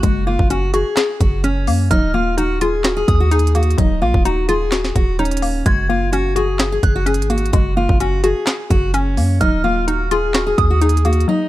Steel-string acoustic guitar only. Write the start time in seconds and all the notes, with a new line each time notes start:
0.03 F#4
0.27 F4
0.50 F#4
0.74 G#4
1.20 F#4
1.44 C#4
1.91 D#4
2.14 F4
2.38 F#4
2.61 G#4
2.97 G#4
3.20 F#4
3.32 G#4
3.56 F#4
3.79 D#4
4.02 F4
4.25 F#4
4.49 G#4
4.95 F#4
5.19 C#4
5.66 F#4
5.90 F4
6.12 F#4
6.37 G#4
6.72 G#4
6.96 F#4
7.07 G#4
7.30 F#4
7.53 F#4
7.77 F4
8.01 F#4
8.24 G#4
8.70 F#4
8.94 C#4
9.41 D#4
9.64 F4
9.88 F#4
10.11 G#4
10.47 G#4
10.70 F#4
10.82 G#4
11.06 F#4
11.29 D#4